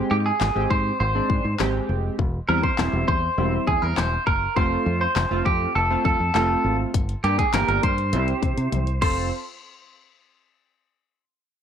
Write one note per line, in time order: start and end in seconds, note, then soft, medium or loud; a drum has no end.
0.00 0.28 G#3 medium
0.00 0.28 C4 medium
0.00 0.28 G4 loud
0.11 0.30 G#2 medium
0.11 0.16 G4 medium
0.26 0.70 G#4 medium
0.41 0.50 G#1 loud
0.41 snare medium
0.41 clap loud
0.55 0.65 G#1 medium
0.55 0.93 G#3 medium
0.55 0.93 C4 medium
0.55 0.93 G4 medium
0.70 0.90 G#2 loud
0.70 0.99 C5 medium
0.70 kick medium
1.00 1.19 G#1 loud
1.00 1.55 C5 medium
1.15 1.43 G#3 medium
1.15 1.43 C4 medium
1.15 1.43 D4 medium
1.30 1.39 G#2 medium
1.30 kick medium
1.45 1.54 G#2 medium
1.59 1.79 G#1 medium
1.59 2.16 G#3 medium
1.59 2.16 C4 medium
1.59 2.16 G4 medium
1.59 snare medium
1.59 clap loud
1.89 2.08 F1 medium
2.19 2.38 E1 loud
2.19 kick loud
2.48 2.68 E2 medium
2.48 2.67 G3 medium
2.48 2.67 C4 medium
2.48 2.67 E4 medium
2.48 2.62 A#4 medium
2.63 3.05 C5 loud
2.63 kick medium
2.78 2.88 E1 loud
2.78 3.16 G3 medium
2.78 3.16 C4 medium
2.78 3.16 E4 medium
2.78 snare medium
2.78 clap loud
2.93 3.03 E1 loud
3.08 3.27 E2 loud
3.08 3.67 C5 loud
3.08 kick loud
3.38 3.57 E1 loud
3.38 4.13 G3 medium
3.38 4.13 C4 medium
3.38 4.13 E4 medium
3.67 3.77 E2 loud
3.67 3.82 G#4 medium
3.67 kick medium
3.82 3.92 E2 loud
3.82 3.97 A#4 medium
3.97 4.17 E1 medium
3.97 4.26 C5 loud
3.97 snare medium
3.97 clap loud
4.27 4.46 F#1 medium
4.27 4.56 A#4 medium
4.27 kick medium
4.56 4.76 F1 loud
4.56 5.03 A3 medium
4.56 5.04 C4 medium
4.56 5.04 F4 loud
4.56 5.00 C5 loud
4.56 kick loud
4.86 5.06 F2 loud
5.01 5.45 C5 medium
5.16 5.26 F1 loud
5.16 snare medium
5.16 clap loud
5.31 5.40 F1 loud
5.31 5.68 A3 medium
5.31 5.68 C4 medium
5.31 5.69 F4 medium
5.45 5.65 F2 loud
5.45 5.73 G4 medium
5.45 kick medium
5.75 5.95 F1 loud
5.75 6.03 A4 medium
5.90 6.18 A3 medium
5.90 6.18 C4 medium
5.90 6.19 F4 medium
6.05 6.15 F2 medium
6.05 6.33 A4 medium
6.05 kick medium
6.20 6.30 F2 loud
6.34 6.54 F1 medium
6.34 6.91 A3 medium
6.34 6.91 C4 medium
6.34 6.91 F4 medium
6.34 6.76 A4 medium
6.34 snare medium
6.34 clap loud
6.64 6.84 G#1 medium
6.94 7.13 G1 loud
6.94 kick loud
6.94 closed hi-hat loud
7.09 closed hi-hat medium
7.24 7.43 G2 medium
7.24 7.43 A#3 medium
7.24 7.43 D4 medium
7.24 7.38 G4 medium
7.24 7.43 G4 medium
7.24 closed hi-hat medium
7.39 7.53 G#4 medium
7.39 kick medium
7.39 closed hi-hat medium
7.53 7.63 G1 loud
7.53 7.91 A#3 medium
7.53 7.91 D4 medium
7.53 7.91 G4 medium
7.53 7.67 A#4 loud
7.53 snare medium
7.53 clap loud
7.53 closed hi-hat medium
7.68 7.78 G1 loud
7.68 7.82 A#4 medium
7.68 closed hi-hat medium
7.83 8.14 G2 loud
7.83 8.98 C5 loud
7.83 kick medium
7.83 closed hi-hat medium
7.98 closed hi-hat soft
8.13 8.32 C2 loud
8.13 8.88 C4 medium
8.13 8.88 E4 medium
8.13 8.88 G4 medium
8.13 closed hi-hat medium
8.28 closed hi-hat soft
8.43 8.52 C3 medium
8.43 kick medium
8.43 closed hi-hat medium
8.57 8.67 C3 loud
8.57 closed hi-hat soft
8.72 9.01 C2 medium
8.72 closed hi-hat medium
8.72 high tom medium
8.87 closed hi-hat soft
9.02 9.30 F1 medium
9.02 9.30 C4 medium
9.02 9.30 F4 medium
9.02 9.30 A4 medium
9.02 9.30 C5 medium
9.02 kick loud
9.02 crash medium